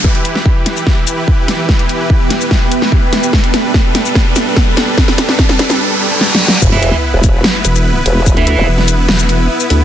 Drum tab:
CC |------------------------------------------------|------------------------------------------------|------------------------------------------------|------------------------------------------------|
HH |---x--x-----------x-----------x-----------o-----|---x--x-----------x-----------x-----------o-----|---x--x-----------x-----------x-----------o-----|---x--x-----------x-----------------------------|
SH |---------------------x--------x-----------------|---------------------x-----------------------x--|---------------------x--------x-----------------|---------------------x--------------------------|
SD |o--------o--------o-----o-----------------o-----|o-----------------o-----o--------o--------o-----|o-----o-----o-----o-----o-----o-----o-----o-----|o--o--o--o--o--o--o--o--------------o---o---o---|
BD |o-----------o-----------o-----------o-----------|o-----------o-----------o-----------o-----------|o-----------o-----------o-----------o-----------|o-----------o-----------------------------------|

CC |x-----------------------------------------------|------------------------------------------------|
HH |---x--x-----------x-----------x-----------o-----|---x--x-----------x-----------x-----------o-----|
SH |x-----------------x-----------x--x--------------|x-----------------x--------x-----------x--------|
SD |------------------------o-----------------------|---------------o--------o-----------------------|
BD |o-----------------o-----------------------------|o-----------------------------------------------|